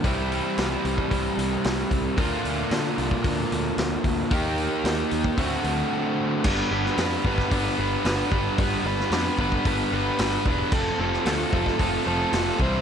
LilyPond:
<<
  \new Staff \with { instrumentName = "Overdriven electric guitar" } { \time 4/4 \key d \mixolydian \tempo 4 = 112 <c e g c' e'>1 | <d bes d' f'>1 | <ees bes ees' g'>2 <d a c' fis'>2 | \key g \mixolydian <g b d' b'>8 <g b d' b'>8 <g b d' b'>8 <g b d' b'>8 <g b d' b'>8 <g b d' b'>8 <g b d' b'>8 <g b d' b'>8 |
<g b d' b'>8 <g b d' b'>8 <g b d' b'>8 <g b d' b'>8 <g b d' b'>8 <g b d' b'>8 <g b d' b'>8 <g b d' b'>8 | <f a c' f' a'>8 <f a c' f' a'>8 <f a c' f' a'>8 <f a c' f' a'>8 <f a c' f' a'>8 <f a c' f' a'>8 <f a c' f' a'>8 <c e g c' e' c''>8 | }
  \new Staff \with { instrumentName = "Picked electric bass" } { \clef bass \time 4/4 \key d \mixolydian c,4 c,8 c,8 c,8 c,8 c,8 c,8 | d,8 d,8 d8 c,8 d,8 d,8 d,8 d,8 | ees,4 ees,8 ees,8 d,8 d,8 r4 | \key g \mixolydian g,,8 g,,8 f,8 g,,8 g,,8 g,,8 g,,8 g,,8 |
g,,8 g,,8 f,8 g,,8 g,,8 g,,8 g,,8 e,,8 | f,,8 f,,8 d,8 f,,8 f,,8 f,,8 f,,8 c,8 | }
  \new DrumStaff \with { instrumentName = "Drums" } \drummode { \time 4/4 <hho bd>8 hho8 <hho sn>8 hho16 bd16 <hho bd>8 hho8 <hho sn>8 <hho bd>8 | <hho bd>8 hho8 <hho sn>8 hho16 bd16 <hho bd>8 hho8 <hho sn>8 <hho bd>8 | <hho bd>8 hho8 <hho sn>8 hho16 bd16 <hho bd>8 hho8 r4 | <cymc bd>8. sn16 <hho sn>8 bd16 <bd sn>16 <hho bd>4 <hho sn>8 bd8 |
<hho bd>8. sn16 <hho sn>8 bd16 bd16 <hho bd>4 <hho sn>8 bd8 | <cymc bd>8. sn16 <hho sn>8 bd16 <bd sn>16 <hho bd>4 <hho sn>8 bd8 | }
>>